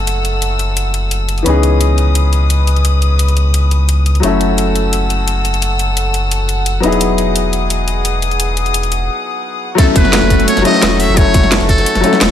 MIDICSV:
0, 0, Header, 1, 7, 480
1, 0, Start_track
1, 0, Tempo, 346821
1, 101, Time_signature, 4, 2, 24, 8
1, 17037, End_track
2, 0, Start_track
2, 0, Title_t, "String section"
2, 0, Program_c, 0, 48
2, 0, Note_on_c, 0, 69, 69
2, 0, Note_on_c, 0, 78, 64
2, 0, Note_on_c, 0, 88, 77
2, 1982, Note_off_c, 0, 69, 0
2, 1982, Note_off_c, 0, 78, 0
2, 1982, Note_off_c, 0, 88, 0
2, 2019, Note_on_c, 0, 71, 73
2, 2020, Note_on_c, 0, 87, 79
2, 5822, Note_off_c, 0, 71, 0
2, 5822, Note_off_c, 0, 87, 0
2, 5858, Note_on_c, 0, 78, 65
2, 5859, Note_on_c, 0, 69, 71
2, 5859, Note_on_c, 0, 88, 79
2, 9424, Note_off_c, 0, 69, 0
2, 9424, Note_off_c, 0, 88, 0
2, 9460, Note_on_c, 0, 68, 73
2, 9462, Note_on_c, 0, 87, 78
2, 13484, Note_off_c, 0, 78, 0
2, 13500, Note_off_c, 0, 68, 0
2, 13501, Note_off_c, 0, 87, 0
2, 13539, Note_on_c, 0, 78, 73
2, 13541, Note_on_c, 0, 85, 90
2, 13542, Note_on_c, 0, 69, 80
2, 17037, Note_off_c, 0, 69, 0
2, 17037, Note_off_c, 0, 78, 0
2, 17037, Note_off_c, 0, 85, 0
2, 17037, End_track
3, 0, Start_track
3, 0, Title_t, "Muted trumpet"
3, 0, Program_c, 1, 59
3, 13544, Note_on_c, 1, 69, 101
3, 13651, Note_off_c, 1, 69, 0
3, 13784, Note_on_c, 1, 71, 107
3, 14452, Note_off_c, 1, 71, 0
3, 14503, Note_on_c, 1, 73, 106
3, 14725, Note_off_c, 1, 73, 0
3, 14745, Note_on_c, 1, 75, 112
3, 15224, Note_on_c, 1, 76, 108
3, 15245, Note_off_c, 1, 75, 0
3, 15463, Note_on_c, 1, 73, 115
3, 15483, Note_off_c, 1, 76, 0
3, 15942, Note_off_c, 1, 73, 0
3, 16178, Note_on_c, 1, 69, 103
3, 17037, Note_off_c, 1, 69, 0
3, 17037, End_track
4, 0, Start_track
4, 0, Title_t, "Grand piano"
4, 0, Program_c, 2, 0
4, 0, Control_c, 2, 64, 127
4, 0, Note_on_c, 2, 54, 68
4, 0, Note_on_c, 2, 57, 62
4, 0, Note_on_c, 2, 61, 60
4, 0, Note_on_c, 2, 64, 61
4, 0, Note_on_c, 2, 69, 73
4, 1970, Note_off_c, 2, 54, 0
4, 1972, Note_on_c, 2, 52, 69
4, 1982, Note_off_c, 2, 57, 0
4, 1993, Note_off_c, 2, 61, 0
4, 1995, Note_on_c, 2, 59, 65
4, 2006, Note_off_c, 2, 64, 0
4, 2017, Note_off_c, 2, 69, 0
4, 2019, Note_on_c, 2, 61, 64
4, 2040, Control_c, 2, 64, 0
4, 2043, Note_on_c, 2, 63, 63
4, 2066, Note_on_c, 2, 68, 77
4, 2256, Control_c, 2, 64, 127
4, 5809, Note_off_c, 2, 52, 0
4, 5812, Note_on_c, 2, 54, 69
4, 5820, Note_off_c, 2, 59, 0
4, 5832, Note_off_c, 2, 61, 0
4, 5836, Note_on_c, 2, 57, 62
4, 5845, Note_off_c, 2, 63, 0
4, 5856, Note_off_c, 2, 68, 0
4, 5859, Note_on_c, 2, 61, 62
4, 5880, Control_c, 2, 64, 0
4, 5883, Note_on_c, 2, 64, 62
4, 5907, Note_on_c, 2, 69, 74
4, 6097, Control_c, 2, 64, 127
4, 9394, Note_off_c, 2, 54, 0
4, 9414, Note_on_c, 2, 54, 71
4, 9421, Note_off_c, 2, 57, 0
4, 9433, Note_off_c, 2, 61, 0
4, 9438, Note_on_c, 2, 59, 64
4, 9445, Note_off_c, 2, 64, 0
4, 9456, Note_off_c, 2, 69, 0
4, 9461, Note_on_c, 2, 63, 63
4, 9480, Control_c, 2, 64, 0
4, 9485, Note_on_c, 2, 64, 65
4, 9509, Note_on_c, 2, 68, 77
4, 9744, Control_c, 2, 64, 127
4, 12558, Note_off_c, 2, 54, 0
4, 12569, Note_off_c, 2, 59, 0
4, 12581, Note_off_c, 2, 63, 0
4, 12593, Note_off_c, 2, 64, 0
4, 12605, Note_off_c, 2, 68, 0
4, 13493, Note_on_c, 2, 54, 90
4, 13516, Note_on_c, 2, 57, 79
4, 13540, Note_on_c, 2, 61, 80
4, 13557, Control_c, 2, 64, 0
4, 13563, Note_on_c, 2, 64, 82
4, 13588, Note_on_c, 2, 69, 99
4, 13786, Control_c, 2, 64, 127
4, 14671, Note_off_c, 2, 54, 0
4, 14692, Note_on_c, 2, 54, 96
4, 14694, Note_off_c, 2, 57, 0
4, 14713, Note_off_c, 2, 61, 0
4, 14715, Note_on_c, 2, 57, 86
4, 14724, Note_off_c, 2, 64, 0
4, 14737, Note_off_c, 2, 69, 0
4, 14739, Note_on_c, 2, 61, 86
4, 14762, Note_on_c, 2, 64, 85
4, 14786, Note_on_c, 2, 69, 102
4, 15393, Note_off_c, 2, 54, 0
4, 15414, Note_on_c, 2, 54, 91
4, 15418, Note_off_c, 2, 57, 0
4, 15432, Note_off_c, 2, 61, 0
4, 15438, Note_on_c, 2, 57, 80
4, 15444, Note_off_c, 2, 64, 0
4, 15456, Note_off_c, 2, 69, 0
4, 15462, Note_on_c, 2, 61, 82
4, 15485, Note_on_c, 2, 64, 81
4, 15510, Note_on_c, 2, 69, 100
4, 16592, Note_off_c, 2, 54, 0
4, 16613, Note_on_c, 2, 54, 96
4, 16615, Note_off_c, 2, 57, 0
4, 16634, Note_off_c, 2, 61, 0
4, 16636, Note_on_c, 2, 57, 88
4, 16646, Note_off_c, 2, 64, 0
4, 16658, Note_off_c, 2, 69, 0
4, 16660, Note_on_c, 2, 61, 84
4, 16684, Note_on_c, 2, 64, 83
4, 16708, Note_on_c, 2, 69, 102
4, 17037, Note_off_c, 2, 54, 0
4, 17037, Note_off_c, 2, 57, 0
4, 17037, Note_off_c, 2, 61, 0
4, 17037, Note_off_c, 2, 64, 0
4, 17037, Note_off_c, 2, 69, 0
4, 17037, End_track
5, 0, Start_track
5, 0, Title_t, "Sub bass"
5, 0, Program_c, 3, 38
5, 0, Note_on_c, 3, 30, 83
5, 1998, Note_off_c, 3, 30, 0
5, 2021, Note_on_c, 3, 37, 83
5, 5838, Note_off_c, 3, 37, 0
5, 5860, Note_on_c, 3, 30, 83
5, 9438, Note_off_c, 3, 30, 0
5, 9461, Note_on_c, 3, 28, 84
5, 12581, Note_off_c, 3, 28, 0
5, 13780, Note_on_c, 3, 30, 102
5, 14126, Note_off_c, 3, 30, 0
5, 14147, Note_on_c, 3, 30, 100
5, 14483, Note_off_c, 3, 30, 0
5, 14629, Note_on_c, 3, 30, 86
5, 14731, Note_off_c, 3, 30, 0
5, 14981, Note_on_c, 3, 28, 84
5, 15327, Note_off_c, 3, 28, 0
5, 15346, Note_on_c, 3, 30, 102
5, 15683, Note_off_c, 3, 30, 0
5, 15699, Note_on_c, 3, 30, 100
5, 16046, Note_off_c, 3, 30, 0
5, 16068, Note_on_c, 3, 30, 97
5, 16403, Note_off_c, 3, 30, 0
5, 16546, Note_on_c, 3, 30, 87
5, 16649, Note_off_c, 3, 30, 0
5, 16901, Note_on_c, 3, 28, 85
5, 17037, Note_off_c, 3, 28, 0
5, 17037, End_track
6, 0, Start_track
6, 0, Title_t, "Downlifter"
6, 0, Program_c, 4, 103
6, 13540, Note_on_c, 4, 60, 76
6, 17037, Note_off_c, 4, 60, 0
6, 17037, End_track
7, 0, Start_track
7, 0, Title_t, "Drums"
7, 101, Note_on_c, 9, 42, 81
7, 239, Note_off_c, 9, 42, 0
7, 343, Note_on_c, 9, 42, 58
7, 481, Note_off_c, 9, 42, 0
7, 580, Note_on_c, 9, 42, 82
7, 719, Note_off_c, 9, 42, 0
7, 822, Note_on_c, 9, 42, 58
7, 960, Note_off_c, 9, 42, 0
7, 1061, Note_on_c, 9, 42, 85
7, 1200, Note_off_c, 9, 42, 0
7, 1300, Note_on_c, 9, 42, 61
7, 1439, Note_off_c, 9, 42, 0
7, 1539, Note_on_c, 9, 42, 81
7, 1678, Note_off_c, 9, 42, 0
7, 1779, Note_on_c, 9, 42, 60
7, 1905, Note_off_c, 9, 42, 0
7, 1905, Note_on_c, 9, 42, 32
7, 2019, Note_off_c, 9, 42, 0
7, 2019, Note_on_c, 9, 42, 79
7, 2157, Note_off_c, 9, 42, 0
7, 2260, Note_on_c, 9, 42, 56
7, 2398, Note_off_c, 9, 42, 0
7, 2500, Note_on_c, 9, 42, 81
7, 2638, Note_off_c, 9, 42, 0
7, 2739, Note_on_c, 9, 42, 56
7, 2877, Note_off_c, 9, 42, 0
7, 2979, Note_on_c, 9, 42, 81
7, 3117, Note_off_c, 9, 42, 0
7, 3220, Note_on_c, 9, 42, 56
7, 3359, Note_off_c, 9, 42, 0
7, 3461, Note_on_c, 9, 42, 80
7, 3599, Note_off_c, 9, 42, 0
7, 3701, Note_on_c, 9, 42, 58
7, 3826, Note_off_c, 9, 42, 0
7, 3826, Note_on_c, 9, 42, 30
7, 3940, Note_off_c, 9, 42, 0
7, 3940, Note_on_c, 9, 42, 76
7, 4079, Note_off_c, 9, 42, 0
7, 4179, Note_on_c, 9, 42, 57
7, 4318, Note_off_c, 9, 42, 0
7, 4418, Note_on_c, 9, 42, 80
7, 4545, Note_off_c, 9, 42, 0
7, 4545, Note_on_c, 9, 42, 32
7, 4659, Note_off_c, 9, 42, 0
7, 4659, Note_on_c, 9, 42, 54
7, 4797, Note_off_c, 9, 42, 0
7, 4899, Note_on_c, 9, 42, 79
7, 5037, Note_off_c, 9, 42, 0
7, 5139, Note_on_c, 9, 42, 54
7, 5278, Note_off_c, 9, 42, 0
7, 5379, Note_on_c, 9, 42, 79
7, 5518, Note_off_c, 9, 42, 0
7, 5619, Note_on_c, 9, 42, 56
7, 5745, Note_off_c, 9, 42, 0
7, 5745, Note_on_c, 9, 42, 30
7, 5858, Note_off_c, 9, 42, 0
7, 5858, Note_on_c, 9, 42, 78
7, 5997, Note_off_c, 9, 42, 0
7, 6099, Note_on_c, 9, 42, 55
7, 6238, Note_off_c, 9, 42, 0
7, 6339, Note_on_c, 9, 42, 80
7, 6477, Note_off_c, 9, 42, 0
7, 6581, Note_on_c, 9, 42, 57
7, 6719, Note_off_c, 9, 42, 0
7, 6820, Note_on_c, 9, 42, 79
7, 6959, Note_off_c, 9, 42, 0
7, 7061, Note_on_c, 9, 42, 58
7, 7199, Note_off_c, 9, 42, 0
7, 7301, Note_on_c, 9, 42, 79
7, 7439, Note_off_c, 9, 42, 0
7, 7540, Note_on_c, 9, 42, 58
7, 7666, Note_off_c, 9, 42, 0
7, 7666, Note_on_c, 9, 42, 30
7, 7780, Note_off_c, 9, 42, 0
7, 7780, Note_on_c, 9, 42, 82
7, 7918, Note_off_c, 9, 42, 0
7, 8019, Note_on_c, 9, 42, 58
7, 8157, Note_off_c, 9, 42, 0
7, 8260, Note_on_c, 9, 42, 83
7, 8398, Note_off_c, 9, 42, 0
7, 8499, Note_on_c, 9, 42, 57
7, 8637, Note_off_c, 9, 42, 0
7, 8739, Note_on_c, 9, 42, 82
7, 8878, Note_off_c, 9, 42, 0
7, 8979, Note_on_c, 9, 42, 58
7, 9118, Note_off_c, 9, 42, 0
7, 9218, Note_on_c, 9, 42, 85
7, 9357, Note_off_c, 9, 42, 0
7, 9458, Note_on_c, 9, 42, 60
7, 9584, Note_off_c, 9, 42, 0
7, 9584, Note_on_c, 9, 42, 32
7, 9699, Note_off_c, 9, 42, 0
7, 9699, Note_on_c, 9, 42, 87
7, 9837, Note_off_c, 9, 42, 0
7, 9939, Note_on_c, 9, 42, 61
7, 10078, Note_off_c, 9, 42, 0
7, 10180, Note_on_c, 9, 42, 86
7, 10318, Note_off_c, 9, 42, 0
7, 10421, Note_on_c, 9, 42, 63
7, 10559, Note_off_c, 9, 42, 0
7, 10661, Note_on_c, 9, 42, 86
7, 10799, Note_off_c, 9, 42, 0
7, 10901, Note_on_c, 9, 42, 63
7, 11039, Note_off_c, 9, 42, 0
7, 11140, Note_on_c, 9, 42, 87
7, 11278, Note_off_c, 9, 42, 0
7, 11381, Note_on_c, 9, 42, 63
7, 11507, Note_off_c, 9, 42, 0
7, 11507, Note_on_c, 9, 42, 33
7, 11620, Note_off_c, 9, 42, 0
7, 11620, Note_on_c, 9, 42, 88
7, 11759, Note_off_c, 9, 42, 0
7, 11860, Note_on_c, 9, 42, 64
7, 11986, Note_off_c, 9, 42, 0
7, 11986, Note_on_c, 9, 42, 35
7, 12100, Note_off_c, 9, 42, 0
7, 12100, Note_on_c, 9, 42, 89
7, 12227, Note_off_c, 9, 42, 0
7, 12227, Note_on_c, 9, 42, 36
7, 12342, Note_off_c, 9, 42, 0
7, 12342, Note_on_c, 9, 42, 63
7, 12480, Note_off_c, 9, 42, 0
7, 13540, Note_on_c, 9, 36, 121
7, 13541, Note_on_c, 9, 42, 96
7, 13542, Note_off_c, 9, 42, 0
7, 13542, Note_on_c, 9, 42, 87
7, 13678, Note_off_c, 9, 36, 0
7, 13680, Note_off_c, 9, 42, 0
7, 13779, Note_on_c, 9, 36, 109
7, 13781, Note_on_c, 9, 42, 69
7, 13783, Note_off_c, 9, 42, 0
7, 13783, Note_on_c, 9, 42, 68
7, 13908, Note_on_c, 9, 40, 36
7, 13918, Note_off_c, 9, 36, 0
7, 13921, Note_off_c, 9, 42, 0
7, 14020, Note_on_c, 9, 38, 115
7, 14020, Note_on_c, 9, 42, 89
7, 14046, Note_off_c, 9, 40, 0
7, 14158, Note_off_c, 9, 38, 0
7, 14158, Note_off_c, 9, 42, 0
7, 14259, Note_on_c, 9, 36, 59
7, 14260, Note_on_c, 9, 42, 66
7, 14262, Note_off_c, 9, 42, 0
7, 14262, Note_on_c, 9, 42, 69
7, 14388, Note_off_c, 9, 42, 0
7, 14388, Note_on_c, 9, 42, 38
7, 14398, Note_off_c, 9, 36, 0
7, 14502, Note_off_c, 9, 42, 0
7, 14502, Note_on_c, 9, 42, 97
7, 14503, Note_off_c, 9, 42, 0
7, 14503, Note_on_c, 9, 42, 88
7, 14627, Note_off_c, 9, 42, 0
7, 14627, Note_on_c, 9, 40, 37
7, 14627, Note_on_c, 9, 42, 40
7, 14629, Note_on_c, 9, 38, 52
7, 14741, Note_off_c, 9, 42, 0
7, 14741, Note_on_c, 9, 42, 69
7, 14766, Note_off_c, 9, 40, 0
7, 14767, Note_off_c, 9, 38, 0
7, 14867, Note_on_c, 9, 38, 52
7, 14880, Note_off_c, 9, 42, 0
7, 14981, Note_off_c, 9, 38, 0
7, 14981, Note_on_c, 9, 38, 123
7, 14981, Note_on_c, 9, 42, 98
7, 15107, Note_off_c, 9, 38, 0
7, 15107, Note_on_c, 9, 38, 39
7, 15119, Note_off_c, 9, 42, 0
7, 15219, Note_on_c, 9, 46, 75
7, 15221, Note_on_c, 9, 42, 71
7, 15246, Note_off_c, 9, 38, 0
7, 15357, Note_off_c, 9, 46, 0
7, 15359, Note_off_c, 9, 42, 0
7, 15458, Note_on_c, 9, 42, 92
7, 15460, Note_on_c, 9, 36, 126
7, 15461, Note_off_c, 9, 42, 0
7, 15461, Note_on_c, 9, 42, 89
7, 15598, Note_off_c, 9, 36, 0
7, 15599, Note_off_c, 9, 42, 0
7, 15698, Note_on_c, 9, 42, 67
7, 15699, Note_on_c, 9, 36, 112
7, 15701, Note_off_c, 9, 42, 0
7, 15701, Note_on_c, 9, 42, 68
7, 15825, Note_on_c, 9, 40, 38
7, 15838, Note_off_c, 9, 36, 0
7, 15840, Note_off_c, 9, 42, 0
7, 15939, Note_on_c, 9, 38, 123
7, 15939, Note_on_c, 9, 42, 96
7, 15941, Note_off_c, 9, 38, 0
7, 15941, Note_on_c, 9, 38, 117
7, 15941, Note_on_c, 9, 46, 80
7, 15964, Note_off_c, 9, 40, 0
7, 16067, Note_off_c, 9, 38, 0
7, 16067, Note_on_c, 9, 38, 58
7, 16078, Note_off_c, 9, 42, 0
7, 16079, Note_off_c, 9, 46, 0
7, 16179, Note_on_c, 9, 36, 62
7, 16180, Note_on_c, 9, 42, 67
7, 16181, Note_off_c, 9, 42, 0
7, 16181, Note_on_c, 9, 42, 68
7, 16206, Note_off_c, 9, 38, 0
7, 16306, Note_off_c, 9, 42, 0
7, 16306, Note_on_c, 9, 38, 42
7, 16306, Note_on_c, 9, 42, 38
7, 16317, Note_off_c, 9, 36, 0
7, 16419, Note_off_c, 9, 42, 0
7, 16419, Note_on_c, 9, 42, 93
7, 16420, Note_off_c, 9, 42, 0
7, 16420, Note_on_c, 9, 42, 91
7, 16445, Note_off_c, 9, 38, 0
7, 16544, Note_off_c, 9, 42, 0
7, 16544, Note_on_c, 9, 40, 37
7, 16544, Note_on_c, 9, 42, 38
7, 16546, Note_on_c, 9, 38, 49
7, 16658, Note_off_c, 9, 42, 0
7, 16658, Note_on_c, 9, 42, 67
7, 16660, Note_off_c, 9, 42, 0
7, 16660, Note_on_c, 9, 42, 70
7, 16683, Note_off_c, 9, 40, 0
7, 16684, Note_off_c, 9, 38, 0
7, 16784, Note_on_c, 9, 40, 48
7, 16786, Note_on_c, 9, 38, 52
7, 16799, Note_off_c, 9, 42, 0
7, 16899, Note_off_c, 9, 38, 0
7, 16899, Note_on_c, 9, 38, 120
7, 16899, Note_on_c, 9, 42, 88
7, 16900, Note_off_c, 9, 38, 0
7, 16900, Note_off_c, 9, 42, 0
7, 16900, Note_on_c, 9, 38, 125
7, 16900, Note_on_c, 9, 42, 97
7, 16923, Note_off_c, 9, 40, 0
7, 17037, Note_off_c, 9, 38, 0
7, 17037, Note_off_c, 9, 42, 0
7, 17037, End_track
0, 0, End_of_file